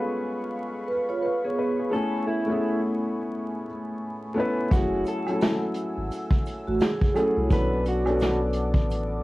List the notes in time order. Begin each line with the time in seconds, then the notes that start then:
Already playing: G#3 B3 C#4 F4 G#4 A4 B4 F5 B5 C#6
0.88 B4
1.09 F4 C#5
1.23 B4 F5
1.44 B3 G#4 C#5
1.59 B4
1.79 G#4
1.90 A3 B3 C#4 A4 G#5
1.95 E4 G#5
2.27 E4
2.46 A3 B3 C#4 E4
2.51 G#4
4.34 A3 B3 C#4 E4
4.40 B4
4.70 F#1 F#3 A3 C#4 E4 F#4 F#5 E6, kick, closed hi-hat, shaker
4.76 G#4
5.06 A4, closed hi-hat, shaker
5.27 F#3 A3 C#4, closed hi-hat, high woodblock
5.31 E4 A4
5.41 snare, closed hi-hat, shaker
5.74 closed hi-hat, shaker
5.97 G#1
6.12 closed hi-hat, shaker
6.31 kick
6.46 closed hi-hat, shaker
6.67 A1 A3 F#4
6.80 G#4, snare, closed hi-hat, shaker
7.01 kick
7.14 F#3 A3 C#4 A4, closed hi-hat, high woodblock, shaker
7.18 E4 G#4
7.36 C2 E4 C#5
7.48 B1 F#3 B3 C#4 D4 B4 A5 D6, kick, closed hi-hat, shaker
7.53 A4 B4
7.85 F#4, closed hi-hat, shaker
8.04 F#3 B3 C#4, closed hi-hat, high woodblock
8.08 D4 A4
8.20 snare, closed hi-hat, shaker
8.53 closed hi-hat, shaker
8.74 A1, kick
8.90 closed hi-hat, shaker